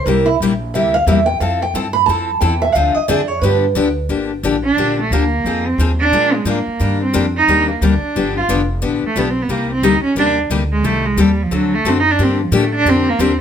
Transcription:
0.06 C2 C3 G3 A#3 E4 G4 A#4
0.26 E4
0.40 A#1 C3 G3 A#3 E4 G4
0.74 D2 C3 G3 A#3 E4 G4 E5
0.94 F5
1.07 E2 C3 G3 A#3 E4 G4 E5
1.26 G5
1.40 F2 F3 C4 E4 A4 F5
1.62 G5
1.74 G2 F3 C4 E4 A4 A5
1.93 B5
2.06 F2 F3 C4 E4 A5
2.10 A4
2.41 E2 F3 C4 E4 A4 G5
2.62 E5
2.72 D2 D3 F3 C4 D4 F5
2.77 G#4
2.94 D#5, muted upright bass stroke
3.08 F2 D3 F3 C4 D4 G#4 D5
3.28 C#5
3.41 G2 D3 F3 B3 D4 G4 B4
3.75 D2 D3 F3 B3 D4 G4
4.09 G1 D3 F3 A#3 D4 G4
4.43 A1 D3 F3 A#3 D4 G4
4.64 D4
4.77 A#1 D3 F3 A#3 D4 G4
5.01 A3
5.10 D2 D3 F3 A#3 D4 G4
5.44 F2 F3 C4 D#4 G#4
5.68 C4
5.78 D#2 F3 C4 D#4 G#4
6.00 D4
6.11 A#2 F3 G#3 D4 F4 A#4
6.34 G#3
6.45 G#2 F3 G#3 A#3 D4 F4 A#4
6.67 muted upright bass stroke
6.80 G2 D#3 G3 A#3 D4 G4
7.03 C4
7.13 F2 D#3 G3 A#3 D4 G4
7.37 D#4
7.47 D#2 D#3 G3 A#3 D4 G4
7.71 A#3
7.81 D2 D#3 G3 A#3 D4 G4
8.02 muted upright bass stroke
8.15 G1 D3 F3 B3 D4 G4
8.37 F4
8.49 F1 D3 F3 B3 D4 G4
8.82 A1 D3 F3 B3 D4 G4
9.03 A3, muted upright bass stroke
9.16 B1 D3 F3 B3 D4 G4
9.30 C4
9.42 B3
9.48 C2 C3 G3 A#3 D#4 G4
9.72 C4
9.83 D2 C3 G3 A#3 D#4 G4
10.03 C#4, muted upright bass stroke
10.15 D#2 C3 G3 A#3 D4 D#4 G4
10.50 D2 C3 G3 A#3 D#4 G4
10.72 G#3
10.83 C2 D#3 G3 A3 C4 G4 A4
11.06 G#3
11.17 D#2 D#3 G3 C4 G4 A4
11.43 F3
11.51 D2 D3 F#3 A3 C4 F#4 A4
11.75 A3
11.85 F#2 D3 A3 C4 F#4 A4
12.00 D#4
12.11 D4
12.19 G2 D3 F3 A#3 D4 G4
12.23 C4
12.43 F3
12.51 A2 D3 F3 A#3 D4 G4
12.55 A3
12.75 D4
12.85 F2 D3 F3 A#3 D4 G4
12.89 C4
13.09 A#3
13.19 D#2 D3 F3 A#3 C4 D4 G4

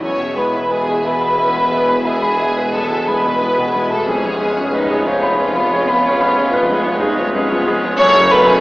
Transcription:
0.00 E1 E2 E3 G#3 B3 C#4 E4 C#5 G#5 C#6
0.17 B2 G#3 G#4 E5
0.36 G#3 B3 E4 B4 G#5 B5
0.54 G#3 E4 G#4 E5
0.71 G#3 B3 E4 G#4 B4 G#5
0.88 G#3 G#4 E5
1.02 B3 B4 E5
1.06 B3 E4 G#5 B5
1.21 G#3 G#4 E5 B5
1.37 B3 C#4 E4 E5 G#5
1.55 G#3 G#4 E5 B5
1.71 B3 E4 E5 G#5
1.89 G#3 G#4 E5 B5
2.04 G#3 B3 E4 G#4 E5 G#5
2.22 G#3 G#4 E5 B5
2.39 B3 E4 E5 G#5
2.56 G#3 G#4 B4 E5
2.72 G#3 A3 B3 E4 A4 G#5 A5
2.89 B2 G#3 G#4 E5
3.05 G#3 B3 E4 B4 G#5 B5
3.22 B2 G#3 G#4 E5
3.38 G#3 B3 E4 G#5
3.55 B2 G#3 G#4 E5
3.72 G#3 B3 E4 G#5
3.88 B2 G#3 A3 G#4 A4 E5 A5
4.04 F1 F2 C#3 G#3 B3 C#4 G#4 B4 G#5
4.21 F3 B3 F4 C#5
4.38 G#3 C#4 G#4 B4
4.54 B3 C#4 F4 C#5
4.70 D#3 C#4 D#4 G#4 B4 D#5
4.87 B3 F4 G#4 C#5
5.03 F3 C#4 D#4 F4 G#4 B4 F5
5.07 C#5
5.20 B3 F4 C#5 B5
5.38 C#4 G#4 B4 C#5
5.54 B3 F4 C#5 B5
5.72 B3 C#4 G#4 B4 C#5
5.89 B3 F4 C#5 B5
6.04 C#4 G#4 B4 C#5
6.20 B3 F4 C#5 B5
6.35 C#4 G#4 B4 C#5
6.52 B3 F4 B4 C#5
6.68 G#3 C#4 G#4 B4
6.84 F3 B3 F4 C#5
6.99 G#3 C#4 D#4 G#4 B4
7.16 F3 B3 F4 C#5
7.33 G#3 C#4 G#4 B4
7.50 F3 B3 F4 C#5
7.64 G#3 B3 C#4 G#4 B4
7.82 F3 B3 F4 C#5
7.97 F#1 F#2 F#3 A3 C#4 A4 C#5 F#5 C#6
8.15 C#3 A3 F#4 C#5
8.30 F#3 A3 B3 A4 B4 F#5 B5
8.47 G#3 A3 C#4 F#4 G#4 C#5 G#5

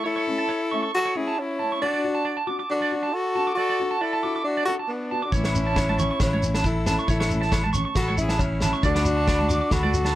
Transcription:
0.04 E4 A4 C#5
0.16 C#5
0.27 A3 C#4
0.38 A5
0.49 C#5
0.71 A3 C#4 C#6
0.83 C#6
0.94 F#4 A4
1.05 C#5
1.15 A3 C#4 E4 G#4
1.28 A5
1.39 C#4 E4
1.59 A3 C#4 A5
1.72 C#6
1.82 D4 F#4 D5, muted nylon-string guitar stroke
1.94 D5
2.04 D4 F#4
2.15 A5
2.25 D5
2.37 A5
2.47 D4 F#4 D6
2.59 D6
2.70 D4 F#4
2.82 D5
2.92 D4 F#4
3.03 A5
3.13 F#4 A4
3.35 D4 F#4 A5
3.47 D6
3.55 F#4 A4 D5
3.70 D5
3.79 D4 F#4
3.91 A5
4.01 E4 A4 D5
4.13 A5
4.23 D4 F#4 D6
4.36 D6
4.44 D4 F#4
4.57 D5
4.65 D4 F#4 A4
4.79 A5
4.88 B3 D4
5.11 D4 F#4 A5
5.22 D4 F#4 D6
5.31 A1 E3 A3 C#4 E4 C#5, muted nylon-string guitar stroke, kick, shekere
5.44 C#5, snare, low agogo
5.54 A3 C#4, shekere
5.67 A5
5.76 C#5, kick, snare, low agogo, shekere
5.89 A5, high conga
5.99 C#4 C#6, muted nylon-string guitar stroke, low conga, shekere
6.11 C#6
6.20 A1 C#4 E4, kick, snare, low conga, low agogo, shekere
6.33 C#5, high conga
6.43 A3 C#4, shekere
6.54 A5, snare, low agogo, shekere
6.64 E4 A4, kick, shekere
6.86 A3 C#4 A5, snare, low conga, low agogo, shekere
6.99 C#6, shekere
7.08 A1 E4 A4 C#5, kick, shekere
7.20 C#5, snare, low agogo
7.31 A3 C#4, shekere
7.41 A5, snare
7.52 C#5, kick, snare, low agogo, shekere
7.64 A5, high conga
7.73 A3 C#4 C#6, low conga, shekere
7.85 C#6
7.95 A1 F#4 A4, kick, snare, low conga, low agogo, shekere
8.08 C#5, high conga
8.18 C#4 E4 G#4, shekere
8.29 A5, snare, low agogo
8.39 C#4 E4, kick, shekere
8.60 A3 C#4 A5, snare, low conga, low agogo, shekere
8.73 C#6, shekere
8.83 D2 A3 D4 F#4 D5, kick, shekere
8.94 D5, snare, low agogo
9.05 D4 F#4, shekere
9.17 A5
9.27 D5, kick, snare, low agogo, shekere
9.39 A5, high conga
9.49 D4 F#4 D6, low conga, shekere
9.61 D6
9.71 D2 F#4 A4, kick, snare, low conga, low agogo, shekere
9.83 D5, high conga
9.94 D4 F#4, shekere
10.05 A5, snare, low agogo, shekere

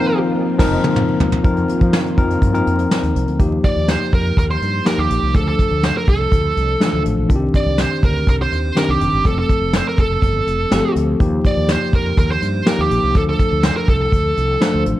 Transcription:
Already playing: D#3 F3 A#3 C4 D#4 F4 A#4 C5
0.58 F1 F3 C4 D#4 A#4, kick, snare, crash
0.84 high tom
0.96 mid tom
1.20 floor tom
1.32 floor tom
1.43 F2 D#3 F3 A#3 C4 D#4 F4 A#4, kick, closed hi-hat
1.57 closed hi-hat
1.69 closed hi-hat
1.81 F3, kick, closed hi-hat
1.93 snare
2.06 closed hi-hat
2.17 F2 F3 C4 D#4 A#4, kick, closed hi-hat
2.30 closed hi-hat
2.42 G2, kick, closed hi-hat
2.53 F3 C4 D#4 A#4, closed hi-hat
2.67 F2, closed hi-hat
2.79 closed hi-hat
2.91 snare
3.03 D#2, closed hi-hat
3.16 C2, closed hi-hat
3.28 D2, closed hi-hat
3.39 D#2 F3 A#3 D#4 G4, kick, closed hi-hat
3.64 D5, kick, closed hi-hat
3.76 D#2
3.88 C5, snare, closed hi-hat
4.13 F2 A#4, kick, closed hi-hat
4.37 D#2 A#4, kick, closed hi-hat
4.50 C5
4.61 G2, closed hi-hat
4.85 F3 A#3 D#4 G4 A#4, snare, closed hi-hat
4.98 D#2 G4
5.10 A#1, closed hi-hat
5.22 C2
5.34 D2 F3 A3 D4 G#4 A4, kick, closed hi-hat
5.41 A4
5.48 A4
5.59 kick, closed hi-hat
5.71 D2
5.83 C5, snare, closed hi-hat
5.97 A#4
6.08 C2 A4, kick, closed hi-hat
6.32 D2, kick, closed hi-hat
6.57 C2, closed hi-hat
6.80 E3 A3 D4 A4, snare, closed hi-hat
6.86 F3
6.93 D2
7.05 A1, closed hi-hat
7.18 A#1
7.28 C2 D#3 C4 D4 F4, kick, closed hi-hat
7.36 G4
7.54 D5, kick, closed hi-hat
7.66 C2
7.78 C5, snare, closed hi-hat
8.03 D2 A#4, kick, closed hi-hat
8.27 C2 A#4, kick, closed hi-hat
8.42 C5
8.51 D#2, closed hi-hat
8.75 D#3 C4 D4 G4 A#4, snare, closed hi-hat
8.88 C2 G4
9.01 F1, closed hi-hat
9.13 G1
9.24 F1 F3 A3 C4 A4, kick, closed hi-hat
9.39 A4
9.49 kick, closed hi-hat
9.61 F1
9.73 C5, snare, closed hi-hat
9.88 A#4
9.98 F1 A4, kick, closed hi-hat
10.22 G1, kick, closed hi-hat
10.47 F1, closed hi-hat
10.71 G1 F3 A3 C4 G4, snare, closed hi-hat
10.78 A4
10.95 D2, closed hi-hat
11.20 D#2 F3 A#3 D#4 G4, kick, closed hi-hat
11.45 D5, kick, closed hi-hat
11.57 D#2
11.69 C5, snare, closed hi-hat
11.93 F2 A#4, kick, closed hi-hat
12.17 D#2 A#4, kick, closed hi-hat
12.31 C5
12.42 G2, closed hi-hat
12.65 F3 A#3 D#4 G4 A#4, snare, closed hi-hat
12.78 D#2 G4
12.91 A#1, closed hi-hat
13.03 C2
13.15 D2 F3 A3 D4 A4, kick, closed hi-hat
13.29 A4
13.39 kick, closed hi-hat
13.52 D2
13.63 C5, snare, closed hi-hat
13.77 A#4
13.88 C2 A4, kick, closed hi-hat
14.12 D2, kick, closed hi-hat
14.37 C2, closed hi-hat
14.61 F3 A3 D4 C5, snare, closed hi-hat
14.74 D2
14.86 A1, closed hi-hat

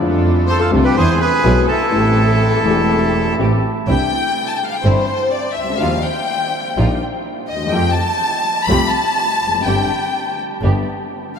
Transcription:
Already playing: D3
0.00 F2 F3 A3 C4 D4 F4 A4
0.47 A4 C5
0.59 F4 A4
0.71 C2 C3 D3 A3 C4 D4 F4 A4
0.83 G4 B4
0.93 E2 E3 G#3 B3 E4 G#4 C5
0.97 G#4 C5
1.18 G#4 B4
1.43 B1 B2 E3 G#3 B3 E4 G#4
1.65 A4
1.71 E4
1.91 A1 A2 E3 A3 C4 G4
1.95 G4
2.63 E1 E2 E3 A3 C4 G4
2.68 G4
3.38 A1 A2 E3 A3 C4 G4
3.87 C2 C3 E3 C4 D4 E4 G4 G5
4.48 A5
4.58 G5
4.65 F5
4.75 G5
4.83 G1 G2 E3 C4 D4 E4 G4 C5
5.30 D5
5.53 C#2 E5
5.64 C2
5.69 C#2
5.76 D2 D#2 F3 F5
5.80 D#2 D#3 G3 A#3 D#4 F4 G4
6.03 G5
6.77 A#1 A#2 F3 G3 A#3 D#4 F4 G4
7.48 D#2 D#5
7.56 D2
7.62 D#2
7.66 E2 G5
7.72 F2 F3 A3 C4 F4 G4
7.93 A5
8.64 B5
8.68 C2 C3 F3 A3 C4 F4 G4
8.89 A5
9.41 F1
9.48 E2
9.54 F2
9.61 G1 F#2 G5
9.66 G1 G2 D3 G3 C4 D4 G4
10.62 G1 G2 D3 G3 B3 D4 G4
11.36 F5

